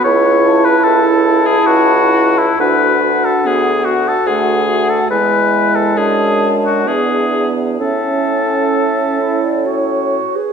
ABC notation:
X:1
M:3/4
L:1/16
Q:1/4=69
K:A
V:1 name="Flute"
z2 a4 a4 a2 | f2 f4 f4 f2 | g4 a4 e4 | e4 e3 d c3 B |]
V:2 name="Oboe"
c3 B A3 G F3 E | B3 A G2 F A G3 A | B3 A G3 F G3 z | A8 z4 |]
V:3 name="French horn"
z2 E4 E4 E2 | F2 F4 F4 F2 | E4 D4 D4 | C8- C2 z2 |]
V:4 name="Clarinet"
E12 | D4 B,2 z2 A,4 | G,8 B,4 | C6 E2 F3 G |]
V:5 name="Bassoon" clef=bass
C,,4 C,,4 C,,4 | D,,4 D,,4 D,,4 | E,,4 F,,4 E,,4 | A,,8- A,,2 z2 |]